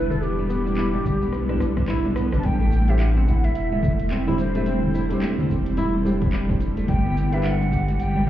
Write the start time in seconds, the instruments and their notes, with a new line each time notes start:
Already playing: sub bass E1, ambient pad G3 B3 D4 E4 B4, nylon-string guitar E4, ney B4
0.10 ney A4, low conga, shaker
0.21 ney G4, ambient pad A4, shaker
0.39 nylon-string guitar G3
0.50 nylon-string guitar B3, shaker
0.66 nylon-string guitar D4, muted conga, shaker
0.77 nylon-string guitar E4, clap, high conga, shaker
0.94 nylon-string guitar G3
1.05 sub bass B1, kick, low conga, shaker
1.22 nylon-string guitar B3, muted conga, high conga, shaker
1.33 cross-stick, shaker
1.49 nylon-string guitar D4, cross-stick
1.60 sub bass B1, cross-stick, high conga, shaker
1.77 nylon-string guitar D4, kick, cross-stick, shaker
1.87 nylon-string guitar E4, cross-stick, clap, high conga, shaker
2.05 nylon-string guitar D4, muted conga
2.16 nylon-string guitar B3, cross-stick, shaker
2.32 sub bass E1, nylon-string guitar D4, cross-stick, low conga, shaker
2.39 ney A5
2.43 sub bass A1, ambient pad G3 C4 E4 A4 C5, nylon-string guitar G3, ney G5, kick, closed hi-hat, shaker
2.61 nylon-string guitar A3
2.72 shaker
2.88 felt piano A3 D4 G4 C5, ney E5, closed hi-hat, shaker
2.99 ney F#5, clap, closed hi-hat, high conga, shaker
3.16 nylon-string guitar C4, shaker
3.27 nylon-string guitar E4, kick, shaker
3.44 ney E5, closed hi-hat, muted conga, high conga, shaker
3.55 sub bass E1, ney E5, closed hi-hat, shaker
3.72 nylon-string guitar G3, high conga
3.83 nylon-string guitar A3, kick, low conga, shaker
4.00 closed hi-hat, shaker
4.11 nylon-string guitar C4, clap, closed hi-hat, shaker
4.27 felt piano A3 D4 G4 C5, nylon-string guitar E4, high conga, low conga, shaker
4.37 nylon-string guitar G3, ney C5, closed hi-hat, muted conga, high conga, shaker
4.55 felt piano A3 D4 G4 E5, nylon-string guitar A3, closed hi-hat, shaker
4.66 nylon-string guitar C4, closed hi-hat, shaker
4.83 low conga
4.94 nylon-string guitar E4, shaker
5.09 nylon-string guitar G3, felt piano A3 D4 G4, closed hi-hat, shaker
5.13 felt piano C5
5.22 nylon-string guitar A3, clap, closed hi-hat, high conga, shaker
5.39 low conga, shaker
5.49 sub bass E1, nylon-string guitar C4, kick, shaker
5.66 closed hi-hat, muted conga, high conga, shaker
5.77 nylon-string guitar E4, closed hi-hat, shaker
6.04 felt piano A3 D4 G4 C5, high conga, shaker
6.21 felt piano A3 D4 G4 C5, kick, closed hi-hat, shaker
6.33 nylon-string guitar G3, clap, closed hi-hat, high conga, shaker
6.49 felt piano A3 D4 G4 C5, kick, muted conga, shaker
6.61 closed hi-hat, shaker
6.77 nylon-string guitar A3, closed hi-hat, shaker
6.88 sub bass G1, nylon-string guitar G3, ambient pad B3 D4 B4 D5, ney G5, kick, closed hi-hat, shaker
7.05 nylon-string guitar B3
7.17 shaker
7.32 felt piano A3 D4 G4 B4, ney E5, closed hi-hat, shaker
7.44 ney F#5, clap, closed hi-hat, high conga, shaker
7.61 nylon-string guitar D4, shaker
7.72 nylon-string guitar G4, kick, shaker
7.88 closed hi-hat, muted conga, high conga, shaker
7.99 sub bass G1, ney G5, closed hi-hat, shaker
8.15 nylon-string guitar G3, high conga